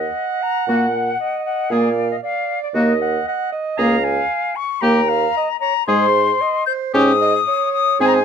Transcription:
Already playing: D#5 F#5
0.42 A#5
0.68 A#2 A#3 F#4 F#5
1.20 D#5
1.45 F#5
1.70 A#2 A#3 G#4 D5 F5
2.11 D#5
2.23 D5 F5
2.63 D5
2.74 D#2 A#3 F#4 D#5
3.01 F#5
3.28 F#5
3.52 D#5
3.78 C#2 A#3 G#4 F5 A#5
4.04 G#5
4.56 C#6
4.81 D#2 A#3 G4 G5 A#5
5.09 F5
5.36 D#5
5.60 C#5 A#5
5.87 G#2 G#3 G#4 C5 C6
6.41 D#5
6.66 C5 G6
6.94 G#2 C#4 G4 C#5 D#6
7.21 D#5
7.48 C#5
7.73 D#6
8.00 G#2 C4 G#4 C5 G#5
8.08 A#5
8.15 G#5

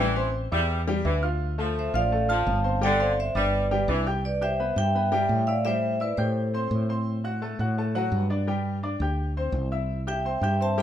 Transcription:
Already playing: A1
0.00 E3 G3 G4 G5
0.16 C4 C5 C6
0.52 E2 G3 E4 E5 E6
0.88 G3 G4 G5
1.05 D2 E3 E4 E5 E6
1.22 F4 F5 F6
1.58 F3 A3 A4 A5
1.79 C5 E5
1.93 A1 F3 F4 D5 F5
2.12 A3 A4 A5
2.29 F3 F4 F5 A5 F6
2.46 G1
2.64 C4 C5 C6
2.81 D3 G3 G4 D5 G5
3.00 C4 C5 D5 F5 C6
3.20 C5 E5
3.35 G1 G3 D4 B4 D5 D6
3.71 G3 G4 G5
3.88 C2 E3 D4 D5 D6
4.06 G4 G5 G6
4.25 B4 D5
4.41 G4 C5 E5 G5 G6
4.60 B3 B4 B5
4.76 G2 G4 E5 G5 G6
4.95 B3 B4 B5
5.12 G3 G4 G5
5.29 A2
5.47 E4 D5 E5 F5 E6
5.65 G3 G4 C5 E5 G5
6.00 E4 B4 D5 E5 E6
6.17 A2 G4 A4 C5 G5 G6
6.54 C4 C5 C6
6.71 A2
6.89 C4 C5 C6
7.24 F#4 F#5 F#6
7.42 A3 A4 A5
7.59 A2 F#4 F#5 F#6
7.78 A3 A4 A5
7.95 F#3 F#4 F#5
8.12 G2
8.30 D4 D5 D6
8.47 G3 G4 G5
8.83 D4 D5 D6
9.00 D2 G4 G5 G6
9.37 C4 C5 C6
9.52 C2
9.72 E4 E5 E6
10.07 G4 E5 G5 G6
10.25 C4 C5 C6
10.41 G2 G4 E5 G5 G6
10.60 C4 C5 E5 A5 C6
10.78 G3 G4 G5

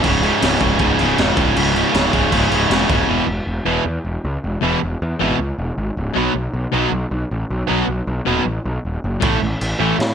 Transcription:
0.03 C#1 C#2 G#2 C#3, kick, crash
0.22 C#2 G#2 C#3, crash
0.40 C#1 C#2 G#2 C#3, snare, crash
0.59 C#1 C#2 G#2 C#3, kick, crash
0.79 C#1 C#2 G#2 C#3, kick, crash
0.99 C#1 C#2 G#2 C#3, crash
1.18 E1 C#2 G#2 C#3, snare, crash
1.35 C#1 C#2 G#2 C#3, kick, crash
1.56 C#1 C#2 G#2 C#3, crash
1.74 C#2 G#2 C#3, crash
1.92 C#1 C#2 G#2 C#3, snare, crash
2.11 C#1 C#2 G#2 C#3, kick, crash
2.31 C#1 C#2 G#2 C#3, kick, crash
2.51 C#1 C#2 G#2 C#3, crash
2.69 E1 C#2 G#2 C#3, snare, crash
2.89 D#1 C#2 G#2 C#3, kick, crash
3.07 E1 E2 B2 E3
3.27 E1
3.47 E1
3.65 E1 E2 B2 E3
3.86 E2
4.04 E1
4.25 C#2
4.44 E1
4.61 E1 E2 B2 E3
4.83 E1
5.02 E2
5.19 G#1 E2 B2 E3
5.39 C#2
5.58 E1
5.78 G#1
5.97 C#1
6.13 B1 B2 F#3 B3
6.35 B1
6.53 B1
6.72 B1 B2 F#3 B3
6.92 B1
7.11 B1
7.31 A1
7.50 B1
7.69 B1 B2 F#3 B3
7.88 B1
8.07 B1
8.25 D#1 B2 F#3 B3
8.46 A1
8.65 B1
8.85 D#1
9.04 F#1
9.20 A1 A2 E3 A3, kick, crash
9.42 A1
9.61 A1, crash
9.80 A1 A2 E3 A3
9.99 A2, snare, crash

